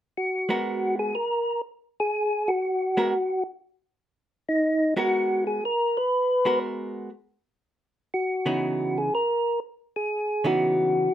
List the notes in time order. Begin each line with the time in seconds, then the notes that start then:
0.17 F#4
0.49 G#3 B3 F#4 A#4
0.99 G#4
1.15 A#4
2.00 G#4
2.48 F#4
2.97 G#3 B3 F#4 A#4
4.49 D#4
4.97 G#3 B3 F#4 A#4
5.47 G#4
5.65 A#4
5.97 B4
6.45 G#3 B3 F#4 A#4
8.14 F#4
8.46 C#3 E3 B3 D#4
8.98 G#4
9.15 A#4
9.96 G#4
10.44 C#3 E3 B3 D#4 F#4